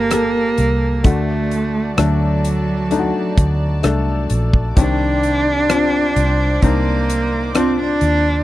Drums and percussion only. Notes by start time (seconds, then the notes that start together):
0.11 cross-stick, closed hi-hat
0.58 closed hi-hat
1.04 kick, closed hi-hat
1.51 closed hi-hat
1.98 cross-stick, closed hi-hat
2.45 closed hi-hat
2.91 closed hi-hat
3.37 kick, closed hi-hat
3.83 cross-stick, closed hi-hat
4.30 closed hi-hat
4.53 kick
4.77 kick, closed hi-hat
5.23 closed hi-hat
5.69 cross-stick, closed hi-hat
6.16 closed hi-hat
6.62 kick, closed hi-hat
7.10 closed hi-hat
7.55 cross-stick, closed hi-hat
8.01 closed hi-hat